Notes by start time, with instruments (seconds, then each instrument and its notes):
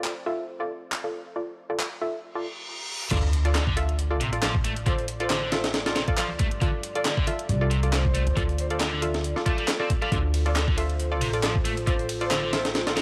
Already playing: synth stab F4 A4 D5, analog synth pad F4 A4 C5
0.04 clap
0.26 synth stab F4 A4 E5
0.60 synth stab F4 A4 D5
0.92 clap
1.04 synth stab F4 A4 D5
1.36 synth stab F4 A4 D5
1.70 synth stab F4 A4 D5
1.80 clap
2.02 synth stab F4 A4 E5
2.23 reverse cymbal
2.35 synth stab F4 A4 D5
3.11 upright bass D2, distorted electric guitar D3, analog synth pad F4 A4 D5, synth stab F4 A4 D5, kick, closed hi-hat, crash, sub drop
3.33 closed hi-hat
3.45 synth stab F4 A4 D5, soft synth lead D5, closed hi-hat
3.55 distorted electric guitar D3, snare, clap, closed hi-hat
3.67 distorted electric guitar D3, kick
3.77 synth stab F4 A4 E5, closed hi-hat
3.89 closed hi-hat
3.99 closed hi-hat
4.11 synth stab F4 A4 D5
4.20 upright bass A1, distorted electric guitar C3, closed hi-hat
4.32 synth stab F4 A4 D5, closed hi-hat
4.43 distorted electric guitar F3, synth stab F4 A4 D5, snare, clap, closed hi-hat
4.55 kick
4.64 distorted electric guitar A3, closed hi-hat
4.76 closed hi-hat
4.86 distorted electric guitar D3, synth stab F4 A4 D5, soft synth lead C5, kick, closed hi-hat
4.98 closed hi-hat
5.08 closed hi-hat
5.20 synth stab F4 A4 D5, soft synth lead C5, closed hi-hat
5.30 distorted electric guitar D3, snare, clap, closed hi-hat
5.42 distorted electric guitar D3
5.52 synth stab F4 A4 E5, snare, closed hi-hat
5.64 snare, closed hi-hat
5.74 snare, closed hi-hat
5.86 synth stab F4 A4 D5, snare, closed hi-hat
5.96 distorted electric guitar C3, snare, closed hi-hat
6.08 synth stab F4 A4 D5, kick, closed hi-hat
6.18 distorted electric guitar F3, synth stab F4 A4 D5, clap, closed hi-hat
6.39 upright bass G2, distorted electric guitar A3, kick, closed hi-hat
6.51 closed hi-hat
6.61 distorted electric guitar D3, synth stab F4 A4 D5, kick, closed hi-hat
6.83 closed hi-hat
6.95 synth stab F4 A4 D5, soft synth lead D5, closed hi-hat
7.05 distorted electric guitar D3, snare, clap, closed hi-hat
7.17 distorted electric guitar D3, kick
7.27 synth stab F4 A4 E5, closed hi-hat
7.39 closed hi-hat
7.49 upright bass C2, closed hi-hat
7.61 synth stab F4 A4 D5
7.71 distorted electric guitar C3, closed hi-hat
7.83 synth stab F4 A4 D5, closed hi-hat
7.93 distorted electric guitar F3, synth stab F4 A4 D5, soft synth lead C5, snare, clap, closed hi-hat
8.05 kick
8.15 distorted electric guitar A3, closed hi-hat
8.27 upright bass D2, closed hi-hat
8.36 upright bass D2, distorted electric guitar D3, synth stab F4 A4 D5, kick, closed hi-hat
8.49 closed hi-hat
8.58 soft synth lead C5, closed hi-hat
8.70 synth stab F4 A4 D5, soft synth lead C5, closed hi-hat
8.80 distorted electric guitar D3, snare, clap, closed hi-hat
8.93 distorted electric guitar D3
9.02 synth stab F4 A4 E5, closed hi-hat
9.14 snare, closed hi-hat
9.24 closed hi-hat
9.36 synth stab F4 A4 D5, snare
9.46 distorted electric guitar A3, synth stab F4 A4 D5, kick, closed hi-hat
9.58 distorted electric guitar G3, closed hi-hat
9.68 snare, clap, closed hi-hat
9.80 distorted electric guitar C4, synth stab F4 A4 D5
9.90 kick, closed hi-hat
10.02 distorted electric guitar G3, synth stab F4 A4 D5, closed hi-hat
10.12 upright bass D2, distorted electric guitar D3, synth stab F4 A4 D5, analog synth pad C5, kick, closed hi-hat
10.34 closed hi-hat, ride
10.46 synth stab F4 A4 D5, soft synth lead D5, closed hi-hat
10.56 distorted electric guitar D3, snare, clap, closed hi-hat
10.68 distorted electric guitar D3, kick
10.78 synth stab F4 A4 E5, closed hi-hat, ride
10.90 closed hi-hat
10.99 closed hi-hat
11.12 synth stab F4 A4 D5
11.21 upright bass A1, distorted electric guitar C3, closed hi-hat, ride
11.33 synth stab F4 A4 D5, closed hi-hat
11.43 distorted electric guitar F3, synth stab F4 A4 D5, snare, clap, closed hi-hat
11.55 kick
11.65 distorted electric guitar A3, closed hi-hat, ride
11.77 closed hi-hat
11.87 distorted electric guitar D3, synth stab F4 A4 D5, soft synth lead C5, kick, closed hi-hat
11.99 closed hi-hat
12.09 closed hi-hat, ride
12.21 synth stab F4 A4 D5, soft synth lead C5, closed hi-hat
12.31 distorted electric guitar D3, snare, clap, closed hi-hat
12.43 distorted electric guitar D3
12.53 synth stab F4 A4 E5, snare, closed hi-hat, ride
12.65 snare, closed hi-hat
12.75 snare, closed hi-hat
12.87 synth stab F4 A4 D5, snare, closed hi-hat
12.96 distorted electric guitar C3, snare, closed hi-hat, ride